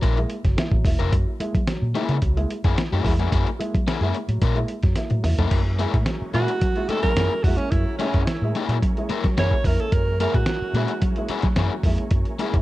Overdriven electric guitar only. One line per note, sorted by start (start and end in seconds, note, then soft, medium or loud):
0.02 0.17 A#3 medium
0.02 0.17 E4 medium
0.02 0.17 A#4 medium
0.99 1.13 A#3 medium
0.99 1.12 E4 medium
0.99 1.12 A#4 medium
1.95 2.15 A#3 medium
1.95 2.15 E4 medium
1.95 2.16 G#4 medium
2.65 2.78 A#3 medium
2.65 2.78 E4 medium
2.65 2.77 G#4 medium
2.93 3.12 A#3 medium
2.93 3.12 E4 medium
2.93 3.12 G#4 medium
3.19 3.30 A#3 medium
3.19 3.30 E4 medium
3.19 3.29 G#4 medium
3.32 3.46 A#3 medium
3.32 3.47 E4 medium
3.32 3.47 G#4 loud
3.87 3.98 A#3 medium
3.87 3.99 E4 medium
3.87 3.99 G#4 medium
4.02 4.15 A#3 medium
4.02 4.15 E4 medium
4.02 4.15 G#4 medium
4.42 4.57 A#3 medium
4.42 4.57 E4 medium
4.42 4.57 A#4 medium
5.39 5.59 A#3 medium
5.39 5.59 E4 medium
5.39 5.59 A#4 medium
5.79 5.94 A#3 medium
5.79 5.94 E4 medium
5.79 5.94 G#4 loud
6.34 6.49 A#3 medium
6.34 6.49 E4 medium
6.34 6.50 G#4 medium
6.90 7.10 A#3 medium
6.90 7.10 E4 loud
6.90 7.11 G#4 medium
7.17 7.32 A#3 medium
7.17 7.32 E4 medium
7.17 7.32 G#4 medium
7.99 8.20 A#3 loud
7.99 8.21 E4 medium
7.99 8.21 G#4 loud
8.55 8.76 A#3 medium
8.55 8.76 E4 medium
8.55 8.76 G#4 medium
9.09 9.24 A#3 medium
9.09 9.25 E4 medium
9.09 9.25 A#4 medium
9.37 9.52 A#3 medium
9.37 9.52 E4 medium
9.37 9.53 G#4 medium
10.20 10.35 A#3 medium
10.20 10.35 E4 loud
10.20 10.35 G#4 medium
10.75 10.89 A#3 medium
10.75 10.90 E4 loud
10.75 10.90 G#4 loud
11.29 11.44 A#3 medium
11.29 11.45 E4 loud
11.29 11.45 G#4 loud
11.57 11.72 A#3 medium
11.57 11.72 E4 medium
11.57 11.72 G#4 medium
12.39 12.54 A#3 medium
12.39 12.54 E4 medium
12.39 12.54 G#4 medium